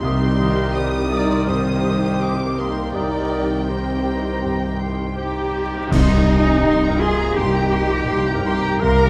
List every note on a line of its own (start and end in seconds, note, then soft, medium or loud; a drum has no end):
0.00 1.43 C2 medium
0.00 2.91 C2 medium
0.00 2.93 C3 medium
0.00 0.38 D#3 medium
0.00 3.57 G3 medium
0.00 3.75 D#4 medium
0.00 1.13 D#4 medium
0.00 2.85 G4 medium
0.00 1.06 G4 loud
0.00 1.45 G4 medium
0.00 2.30 G5 medium
0.00 0.73 C6 medium
0.04 1.08 G3 medium
0.04 0.20 G4 medium
0.04 0.20 D#6 medium
0.21 2.20 C4 medium
0.27 0.65 G3 medium
0.39 0.74 D#3 medium
0.39 4.29 D#3 medium
0.39 0.57 G4 medium
0.39 0.56 D#6 medium
0.50 0.89 D#4 medium
0.75 2.94 D#3 medium
0.75 0.92 G4 medium
0.75 1.13 C5 medium
0.75 1.84 C5 medium
0.75 1.47 D#6 medium
0.75 0.91 D#6 medium
0.99 1.38 G4 medium
1.10 1.48 D#4 medium
1.10 1.28 G4 medium
1.10 1.51 A#4 medium
1.10 1.47 D5 loud
1.10 1.27 D#6 medium
1.24 1.62 D#4 medium
1.29 4.24 C6 medium
1.46 1.86 G2 medium
1.46 2.58 C4 medium
1.46 1.63 G4 medium
1.46 2.92 G4 medium
1.46 2.58 G4 medium
1.46 2.57 C5 medium
1.46 2.20 D#6 medium
1.46 1.64 D#6 medium
1.71 2.11 G3 medium
1.84 2.01 G4 medium
1.84 3.68 C5 medium
1.84 2.00 D#6 medium
1.96 2.36 D#4 medium
2.20 2.57 C4 medium
2.20 2.36 G4 medium
2.20 2.60 C5 medium
2.20 2.58 D6 medium
2.20 2.37 D#6 medium
2.46 2.85 G4 medium
2.57 2.96 A#3 medium
2.57 3.12 C4 soft
2.57 2.74 G4 medium
2.57 2.97 G4 medium
2.57 2.94 A#4 medium
2.57 2.95 C6 medium
2.57 2.75 D#6 medium
2.70 3.10 D#4 soft
2.93 5.14 C2 medium
2.93 4.40 C2 medium
2.93 5.68 C2 medium
2.93 5.91 C3 medium
2.93 5.14 D#3 medium
2.93 3.69 D#4 medium
2.93 3.09 G4 medium
2.93 5.14 G4 medium
2.93 3.71 A#4 medium
2.93 3.68 D5 loud
2.93 5.68 G5 medium
2.93 3.10 D#6 medium
3.13 5.17 C4 soft
3.20 3.59 G3 soft
3.30 3.46 G4 medium
3.30 3.47 D#6 soft
3.44 3.84 D#4 soft
3.68 5.16 C4 medium
3.68 3.84 G4 soft
3.68 4.90 G4 medium
3.68 5.18 C5 medium
3.68 4.80 C5 medium
3.68 4.09 C5 soft
3.68 4.81 A#5 medium
3.94 4.34 G4 soft
4.05 4.21 G4 medium
4.17 4.58 D#4 soft
4.26 8.16 C6 medium
4.43 4.83 G2 soft
4.43 4.59 G4 medium
4.66 5.07 G3 soft
4.80 4.98 G4 medium
4.80 8.71 C5 soft
4.80 5.15 C6 medium
4.92 5.32 D#4 soft
5.15 5.54 C4 soft
5.15 5.93 D#4 medium
5.15 5.93 G4 medium
5.15 5.88 G4 medium
5.15 5.56 C5 soft
5.15 5.93 G5 medium
5.41 5.81 G4 soft
5.55 7.36 C4 soft
5.66 5.91 D#4 soft
5.74 9.10 A#3 soft
5.89 7.32 C2 medium
5.89 6.55 C2 medium
5.89 6.97 C3 loud
5.89 8.81 C3 medium
5.89 8.77 D#3 medium
5.89 8.77 A#3 medium
5.89 7.01 C4 medium
5.89 7.01 D#4 loud
5.89 6.99 D#4 medium
5.89 6.26 D#5 medium
5.89 7.03 D#5 medium
5.89 concert bass drum medium
5.89 crash medium
5.93 6.10 C6 medium
6.12 6.54 G3 medium
6.12 6.29 A#5 medium
6.27 6.64 G#5 medium
6.27 6.47 C6 medium
6.38 6.64 F3 medium
6.48 6.65 A#5 medium
6.63 7.29 C2 medium
6.63 7.02 G3 medium
6.63 7.00 G5 medium
6.63 6.82 C6 medium
6.83 7.01 A#5 medium
6.88 7.27 G2 soft
6.88 8.33 A#4 medium
7.00 7.37 F4 medium
7.00 7.37 G#4 medium
7.00 7.37 G#4 loud
7.00 7.37 G#4 medium
7.00 7.37 F5 medium
7.00 7.38 G#5 medium
7.00 7.19 C6 medium
7.13 7.52 G3 medium
7.18 7.37 A#5 medium
7.35 8.01 C2 medium
7.35 7.76 G2 medium
7.35 9.10 C4 medium
7.35 8.44 D#4 medium
7.35 8.44 G4 medium
7.35 8.43 G4 loud
7.35 8.46 G4 medium
7.35 8.09 D#5 medium
7.35 8.44 G5 medium
7.35 7.54 C6 medium
7.55 7.73 A#5 medium
7.61 9.05 G3 medium
7.61 8.00 G3 medium
7.72 7.91 C6 medium
7.87 8.10 F3 soft
7.91 8.09 A#5 medium
8.08 8.73 C2 medium
8.08 8.48 G3 medium
8.08 9.10 G4 medium
8.08 8.81 G5 medium
8.08 8.25 C6 medium
8.27 8.45 A#5 medium
8.34 8.73 G2 medium
8.34 9.10 A#4 medium
8.44 8.82 D#4 medium
8.44 8.82 G4 medium
8.44 8.80 G4 loud
8.44 8.82 G4 medium
8.44 8.82 G5 medium
8.44 8.63 C6 medium
8.59 8.97 G3 medium
8.59 8.81 A#5 medium
8.80 9.10 C2 medium
8.80 9.10 C3 medium
8.80 9.10 G3 loud
8.80 9.10 A#3 medium
8.80 9.10 G4 medium
8.80 9.10 A#4 loud
8.80 9.10 A#4 medium
8.80 9.10 F5 medium
8.80 9.10 A#5 loud
8.80 8.97 C6 medium
8.98 9.10 A#5 medium
9.06 9.10 G2 medium
9.06 9.10 G3 medium